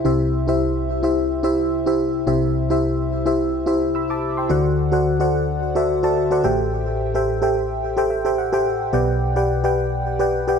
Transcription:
0.05 2.23 C2 medium
0.05 2.23 C3 medium
0.05 0.45 E4 medium
0.05 0.45 G4 medium
0.05 0.45 C5 medium
0.05 0.45 E5 medium
0.48 0.99 E4 medium
0.48 0.99 G4 medium
0.48 0.99 C5 medium
0.48 1.00 E5 medium
1.03 1.41 E4 medium
1.03 1.41 G4 medium
1.03 1.41 C5 medium
1.03 1.41 E5 medium
1.43 1.83 E4 medium
1.43 1.83 G4 medium
1.43 1.84 C5 medium
1.43 1.84 E5 loud
1.86 2.24 E4 medium
1.86 2.24 G4 medium
1.86 2.25 C5 medium
1.86 2.25 E5 medium
2.27 4.45 C2 medium
2.27 4.45 C3 medium
2.27 2.67 E4 medium
2.27 2.67 G4 medium
2.27 2.67 C5 medium
2.27 2.67 E5 medium
2.70 3.21 E4 medium
2.70 3.21 G4 medium
2.70 3.22 C5 medium
2.70 3.22 E5 medium
3.26 3.63 E4 medium
3.26 3.64 G4 medium
3.26 3.64 C5 medium
3.26 3.64 E5 medium
3.66 4.06 E4 medium
3.66 4.06 G4 medium
3.66 4.06 C5 medium
3.66 4.06 E5 medium
3.95 4.09 B5 medium
3.95 4.09 E6 medium
4.10 4.36 A5 medium
4.10 4.36 D6 medium
4.37 4.64 G5 medium
4.37 4.63 C6 medium
4.49 6.40 D2 medium
4.49 6.40 D3 medium
4.49 4.89 F#4 medium
4.49 4.89 A4 medium
4.49 4.89 C5 medium
4.49 4.90 D5 medium
4.49 4.90 F#5 loud
4.92 5.18 F#4 medium
4.92 5.18 A4 medium
4.92 5.18 C5 medium
4.92 5.18 D5 medium
4.92 5.18 F#5 loud
5.20 5.71 F#4 medium
5.20 5.71 A4 medium
5.20 5.71 C5 medium
5.20 5.72 D5 medium
5.20 5.72 F#5 medium
5.75 6.01 F#4 medium
5.75 6.01 A4 medium
5.75 6.01 C5 medium
5.75 6.02 D5 medium
5.75 6.02 E5 loud
6.03 6.29 F#4 medium
6.03 6.29 A4 medium
6.03 6.29 C5 medium
6.03 6.29 D5 medium
6.03 6.29 A5 medium
6.31 6.44 F#4 medium
6.31 6.43 A4 medium
6.31 6.43 C5 medium
6.31 6.44 D5 medium
6.31 6.44 F#5 loud
6.44 8.62 A1 medium
6.44 8.62 A2 medium
6.44 7.09 G4 medium
6.44 7.09 A4 medium
6.44 7.09 C5 medium
6.44 7.09 E5 medium
6.44 7.10 G5 loud
7.14 7.40 G4 medium
7.14 7.40 A4 medium
7.14 7.40 C5 medium
7.14 7.41 E5 medium
7.14 7.41 G5 medium
7.42 7.93 G4 medium
7.42 7.93 A4 medium
7.42 7.94 C5 medium
7.42 7.94 E5 medium
7.42 7.94 G5 medium
7.97 8.23 G4 medium
7.97 8.23 A4 medium
7.97 8.23 C5 medium
7.97 8.09 E5 medium
7.97 8.24 G5 loud
8.10 8.24 E5 medium
8.25 8.51 G4 medium
8.25 8.51 A4 medium
8.25 8.51 C5 medium
8.25 8.51 E5 medium
8.25 8.51 G5 loud
8.38 8.52 F#5 medium
8.53 8.91 G4 medium
8.53 8.91 A4 medium
8.53 8.91 C5 medium
8.53 8.91 E5 medium
8.53 8.91 G5 loud
8.93 10.59 B1 medium
8.93 10.59 B2 medium
8.93 9.33 G4 medium
8.93 9.33 B4 medium
8.93 9.33 D5 medium
8.93 9.34 F#5 medium
8.93 9.34 G5 loud
9.36 9.62 G4 medium
9.36 9.62 B4 medium
9.36 9.62 D5 medium
9.36 9.62 F#5 medium
9.36 9.62 G5 medium
9.64 10.15 G4 medium
9.64 10.15 B4 medium
9.64 10.16 D5 medium
9.64 10.16 F#5 medium
9.64 10.16 G5 loud
10.19 10.45 G4 medium
10.19 10.45 B4 medium
10.19 10.46 D5 medium
10.19 10.46 F#5 medium
10.19 10.46 G5 loud
10.48 10.59 G4 medium
10.48 10.59 B4 medium
10.48 10.59 D5 medium
10.48 10.59 F#5 medium
10.48 10.59 G5 loud

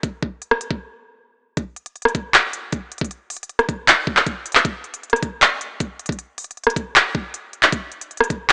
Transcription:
0.03 kick loud
0.03 closed hi-hat medium
0.23 kick loud
0.42 closed hi-hat medium
0.51 cross-stick medium
0.61 closed hi-hat medium
0.71 kick medium
1.57 kick loud
1.57 closed hi-hat medium
1.76 closed hi-hat soft
1.86 closed hi-hat medium
1.96 closed hi-hat soft
2.02 cross-stick medium
2.02 closed hi-hat soft
2.08 closed hi-hat medium
2.15 kick loud
2.15 closed hi-hat medium
2.34 clap loud
2.34 closed hi-hat medium
2.53 closed hi-hat medium
2.72 kick loud
2.72 closed hi-hat medium
2.92 closed hi-hat medium
2.98 kick loud
2.98 closed hi-hat medium
3.04 closed hi-hat medium
3.11 closed hi-hat medium
3.30 closed hi-hat soft
3.30 open hi-hat medium
3.37 closed hi-hat medium
3.43 closed hi-hat medium
3.49 closed hi-hat medium
3.59 cross-stick medium
3.59 closed hi-hat soft
3.69 kick loud
3.69 closed hi-hat medium
3.88 clap loud
3.88 closed hi-hat medium
4.07 kick loud
4.17 clap medium
4.26 kick loud
4.26 closed hi-hat medium
4.46 closed hi-hat medium
4.52 clap medium
4.52 closed hi-hat medium
4.58 closed hi-hat soft
4.65 kick loud
4.65 closed hi-hat medium
4.84 closed hi-hat soft
4.94 closed hi-hat medium
5.03 closed hi-hat soft
5.10 cross-stick medium
5.10 closed hi-hat medium
5.16 closed hi-hat medium
5.23 kick loud
5.23 closed hi-hat medium
5.42 clap loud
5.42 closed hi-hat medium
5.61 closed hi-hat medium
5.80 kick loud
5.80 closed hi-hat medium
5.99 closed hi-hat medium
6.06 kick loud
6.06 closed hi-hat medium
6.12 closed hi-hat medium
6.19 closed hi-hat medium
6.38 closed hi-hat medium
6.38 open hi-hat medium
6.44 closed hi-hat medium
6.51 closed hi-hat medium
6.57 closed hi-hat soft
6.64 cross-stick medium
6.64 closed hi-hat medium
6.70 closed hi-hat medium
6.76 kick loud
6.76 closed hi-hat medium
6.96 clap loud
6.96 closed hi-hat medium
7.15 kick loud
7.34 closed hi-hat medium
7.53 closed hi-hat soft
7.63 clap medium
7.63 closed hi-hat medium
7.72 kick loud
7.72 closed hi-hat medium
7.92 closed hi-hat soft
8.01 closed hi-hat medium
8.11 closed hi-hat soft
8.17 cross-stick medium
8.17 closed hi-hat medium
8.24 closed hi-hat medium
8.30 kick loud
8.30 closed hi-hat medium
8.49 closed hi-hat medium

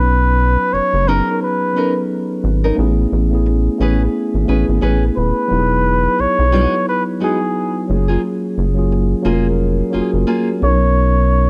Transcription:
0.00 0.57 B1 loud
0.00 0.95 F#3 medium
0.00 0.95 B3 medium
0.00 0.96 C#4 medium
0.00 0.96 D#4 medium
0.00 0.75 B4 medium
0.00 0.97 B4 medium
0.73 0.81 F#1 medium
0.73 1.10 C#5 loud
0.73 muted nylon-string guitar stroke soft
0.94 1.22 F#1 loud
1.04 1.68 F#3 medium
1.04 1.68 B3 medium
1.04 1.69 C#4 medium
1.04 1.28 C#4 medium
1.04 1.70 D#4 medium
1.04 1.41 A#4 loud
1.09 1.29 D#4 medium
1.09 1.70 G#4 medium
1.09 1.29 A#4 medium
1.42 2.05 B4 medium
1.73 2.68 F#3 medium
1.73 2.69 B3 medium
1.73 2.69 C#4 medium
1.73 1.92 C#4 medium
1.73 2.69 D#4 medium
1.73 1.93 D#4 medium
1.78 1.84 A4 medium
1.78 1.93 A#4 medium
1.84 2.73 B4 medium
2.44 2.72 G#1 loud
2.64 2.76 C#4 soft
2.64 2.76 D#4 medium
2.64 2.76 A#4 medium
2.75 3.06 A1 loud
2.75 3.24 A3 loud
2.75 3.25 B3 medium
2.75 3.25 C#4 medium
2.75 3.26 E4 medium
2.80 3.26 G#4 loud
3.12 3.69 A1 loud
3.30 3.75 A3 medium
3.30 3.75 B3 medium
3.30 3.76 C#4 medium
3.30 3.76 E4 medium
3.35 3.77 G#4 medium
3.46 muted nylon-string guitar stroke soft
3.78 4.08 A1 medium
3.78 4.41 A3 medium
3.78 4.41 B3 medium
3.78 4.42 C#4 medium
3.78 4.01 C#4 medium
3.78 4.43 E4 medium
3.78 4.01 G#4 medium
3.78 4.02 B4 medium
3.83 4.43 G#4 medium
4.34 4.46 G#1 medium
4.45 4.65 A1 medium
4.45 5.40 A3 medium
4.45 5.41 B3 medium
4.45 4.65 C#4 medium
4.45 5.42 C#4 medium
4.45 5.42 E4 medium
4.45 4.65 G#4 medium
4.45 4.65 B4 medium
4.50 5.43 G#4 medium
4.69 4.80 G#1 medium
4.81 5.11 A1 medium
4.81 5.02 C#4 medium
4.81 5.03 G#4 medium
4.81 5.03 B4 medium
5.17 5.33 D#1 loud
5.17 6.22 B4 medium
5.48 6.08 E1 loud
5.48 6.43 F#3 medium
5.48 6.43 B3 medium
5.48 6.44 D#4 medium
5.48 6.44 E4 medium
5.53 5.58 G4 medium
5.59 6.48 G#4 medium
6.18 6.27 B1 soft
6.18 6.87 C#5 loud
6.18 muted nylon-string guitar stroke soft
6.39 6.67 B1 loud
6.51 7.14 F#3 medium
6.51 6.74 G#3 medium
6.51 7.14 B3 medium
6.51 6.74 D#4 medium
6.51 7.15 D#4 medium
6.51 7.15 E4 medium
6.51 6.75 F#4 medium
6.55 7.16 B4 medium
6.89 7.03 B4 medium
7.19 7.86 F#3 medium
7.19 7.37 G#3 medium
7.19 7.88 B3 medium
7.19 7.37 D#4 medium
7.19 7.89 D#4 medium
7.19 7.89 E4 medium
7.19 7.38 F#4 medium
7.24 7.29 F#4 medium
7.24 7.86 G#4 medium
7.30 7.91 G#4 medium
7.88 8.18 F#1 loud
7.88 8.66 F#3 medium
7.88 7.96 G#3 medium
7.88 8.67 C#4 medium
7.88 8.68 F4 medium
7.92 8.70 A#3 medium
7.92 8.68 G#4 medium
8.08 8.21 A#3 soft
8.08 8.21 F4 medium
8.08 8.20 G#4 medium
8.58 9.15 F#1 loud
8.74 9.19 F#3 medium
8.74 9.20 A#3 medium
8.74 9.20 C#4 medium
8.74 9.21 F4 medium
8.79 9.22 G#4 medium
8.92 muted nylon-string guitar stroke soft
9.22 9.83 F1 medium
9.22 9.86 F#3 medium
9.22 9.86 A#3 medium
9.22 9.46 A#3 medium
9.22 9.87 C#4 medium
9.22 9.46 F4 medium
9.22 9.88 F4 medium
9.22 9.46 G#4 medium
9.27 9.33 G#4 medium
9.33 9.91 A#4 medium
9.90 10.58 F#3 medium
9.90 10.60 A#3 medium
9.90 10.10 A#3 medium
9.90 10.61 C#4 medium
9.90 10.10 F4 medium
9.90 10.61 F4 medium
9.90 10.10 G#4 medium
9.94 10.02 F#1 soft
9.94 10.01 F#4 medium
10.02 10.65 G#4 medium
10.14 10.25 F#1 medium
10.27 10.48 A#3 medium
10.27 10.48 F4 medium
10.27 10.48 G#4 medium
10.59 11.48 B1 loud
10.59 11.50 F#3 medium
10.59 11.50 B3 medium
10.59 11.50 C#4 medium
10.59 11.50 D#4 medium
10.59 11.50 C#5 medium
10.64 11.50 A#4 medium

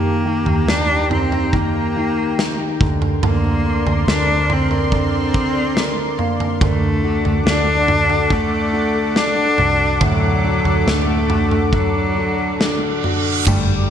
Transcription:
0.00 0.42 D#2 medium
0.00 0.24 D#3 medium
0.00 1.52 D#3 medium
0.00 0.71 A#3 medium
0.00 0.67 A#3 medium
0.00 2.77 G4 medium
0.00 2.78 G5 medium
0.00 2.77 A#5 medium
0.25 0.67 D#3 soft
0.46 0.66 D#2 medium
0.46 0.87 G4 medium
0.46 floor tom medium
0.67 2.76 D#2 medium
0.67 1.10 D#3 soft
0.67 1.74 A#3 medium
0.67 1.11 D4 loud
0.67 snare loud
0.89 1.31 G4 medium
1.11 1.52 D#3 medium
1.11 1.56 C4 medium
1.11 1.95 D#4 medium
1.11 floor tom medium
1.32 2.16 G4 medium
1.32 floor tom medium
1.53 2.80 D#3 medium
1.53 1.95 D#3 medium
1.53 2.81 A#3 medium
1.53 kick medium
1.53 floor tom medium
1.74 2.38 A#3 soft
1.96 2.38 D#3 medium
1.96 2.89 D#4 medium
2.17 2.58 G4 medium
2.39 2.80 D#3 medium
2.39 snare medium
2.60 2.89 G4 medium
2.80 3.20 D2 medium
2.80 3.22 D3 medium
2.80 3.21 D3 medium
2.80 6.57 A#4 medium
2.80 6.57 D5 medium
2.80 6.57 C6 medium
2.80 kick medium
2.80 floor tom medium
3.01 3.86 A#4 medium
3.01 floor tom medium
3.22 3.82 D2 loud
3.22 3.63 D3 medium
3.22 4.92 D3 medium
3.22 4.04 A#3 medium
3.22 floor tom loud
3.44 4.07 C4 medium
3.65 4.06 D3 soft
3.65 4.50 D4 medium
3.86 4.06 D2 medium
3.86 4.28 A#4 medium
3.86 floor tom medium
4.07 6.57 D2 loud
4.07 4.48 D3 medium
4.07 5.12 C4 medium
4.07 4.54 D4 loud
4.07 snare loud
4.29 4.70 A#4 medium
4.49 4.90 D3 soft
4.49 4.94 C4 medium
4.49 5.34 D4 medium
4.49 floor tom medium
4.71 5.54 A#4 medium
4.71 floor tom soft
4.92 5.33 D3 medium
4.92 6.61 D3 medium
4.92 6.16 C4 medium
4.92 kick medium
4.92 floor tom medium
5.13 5.75 C4 medium
5.34 5.75 D3 medium
5.34 6.18 D4 medium
5.34 kick medium
5.55 5.96 A#4 medium
5.77 6.59 D3 medium
5.77 6.70 C4 medium
5.77 snare loud
5.97 6.39 A#4 medium
6.18 6.59 A#3 medium
6.18 6.83 D4 medium
6.18 floor tom medium
6.40 6.70 A#4 medium
6.40 floor tom medium
6.60 7.21 D2 medium
6.60 7.02 D3 medium
6.60 8.31 D3 medium
6.60 7.43 A3 medium
6.60 13.42 A4 medium
6.60 13.42 F#5 medium
6.60 13.42 D6 medium
6.60 kick loud
6.60 floor tom loud
6.83 7.46 D4 medium
7.03 7.44 D3 medium
7.03 7.88 F#4 medium
7.25 7.45 D2 medium
7.25 7.66 A4 medium
7.25 floor tom medium
7.45 9.55 D2 medium
7.45 7.87 D3 medium
7.45 8.53 D4 medium
7.45 8.34 D4 loud
7.45 snare loud
7.68 8.09 A4 medium
7.88 8.29 D3 medium
7.88 8.73 F#4 medium
7.88 floor tom medium
8.09 8.94 A4 medium
8.09 floor tom medium
8.30 8.71 D3 medium
8.30 10.01 D3 medium
8.30 9.18 A3 loud
8.30 kick medium
8.30 floor tom medium
8.53 9.16 D4 medium
8.73 9.13 D3 medium
8.73 9.58 F#4 medium
8.95 9.37 A4 medium
9.15 9.57 D3 medium
9.15 10.22 D4 medium
9.15 10.05 D4 loud
9.15 snare medium
9.38 9.79 A4 medium
9.58 9.99 C2 medium
9.58 10.43 D3 medium
9.58 10.43 F#4 medium
9.58 floor tom medium
9.81 10.64 A4 medium
10.01 10.61 D2 loud
10.01 13.43 A2 medium
10.01 11.72 D3 medium
10.01 10.90 F#3 medium
10.01 kick loud
10.01 floor tom loud
10.22 10.87 D4 medium
10.44 10.85 D3 medium
10.44 11.29 F#4 medium
10.65 10.85 D2 medium
10.65 11.07 A4 medium
10.65 floor tom medium
10.86 13.42 D2 medium
10.86 11.28 D3 medium
10.86 11.74 A3 medium
10.86 11.94 D4 medium
10.86 snare loud
11.09 11.50 A4 medium
11.29 11.70 D3 medium
11.29 12.15 F#4 medium
11.29 floor tom medium
11.51 12.37 A4 medium
11.51 floor tom medium
11.72 12.14 D3 medium
11.72 13.90 D3 medium
11.72 13.00 F#3 medium
11.72 kick medium
11.72 floor tom medium
11.72 reverse cymbal medium
11.95 12.59 D4 medium
12.16 12.58 D3 medium
12.16 13.03 F#4 medium
12.38 12.80 A4 medium
12.60 13.02 D3 medium
12.60 13.69 D4 medium
12.60 snare loud
12.82 13.24 A4 medium
13.04 13.45 D3 medium
13.04 13.55 F#4 medium
13.04 floor tom medium
13.25 13.47 A4 medium
13.46 13.90 G1 loud
13.46 13.90 G2 medium
13.46 13.88 G3 medium
13.46 13.67 A3 medium
13.46 13.89 G4 medium
13.46 13.90 G5 medium
13.46 13.90 A#5 medium
13.46 13.90 D6 loud
13.46 kick medium
13.46 floor tom loud
13.46 crash loud
13.46 tambourine soft
13.46 impact medium
13.69 13.90 D4 medium

